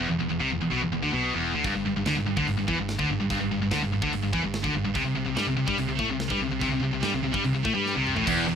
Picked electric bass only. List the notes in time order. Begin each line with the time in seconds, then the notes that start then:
0.10 E1
0.21 E1
0.31 E1
0.41 C2
0.51 E1
0.62 E1
0.72 B1
0.82 E1
0.92 E1
1.03 D2
1.13 B1
1.33 E1
1.54 D2
1.65 G1
1.75 G1
1.86 G1
1.96 G1
2.06 D2
2.16 G1
2.27 G1
2.37 D2
2.48 G1
2.58 G1
2.68 E2
2.79 G1
3.00 D2
3.10 G1
3.20 G1
3.31 G1
3.40 G1
3.51 G1
3.61 G1
3.72 D2
3.82 G1
3.92 G1
4.02 D2
4.13 G1
4.23 G1
4.34 E2
4.44 G1
4.64 D2
4.75 G1
4.85 G1
4.96 C2
5.06 C2
5.17 C2
5.27 C2
5.37 G2
5.47 C2
5.57 C2
5.68 G2
5.78 C2
5.89 C2
5.99 A2
6.09 C2
6.31 G2
6.40 C2
6.51 C2
6.62 C2
6.72 C2
6.82 C2
6.93 C2
7.03 G2
7.15 C2
7.24 C2
7.35 G2
7.45 C2
7.55 C2
7.65 A2
7.76 G2
7.97 C2
8.16 A1
8.28 E1
8.48 E1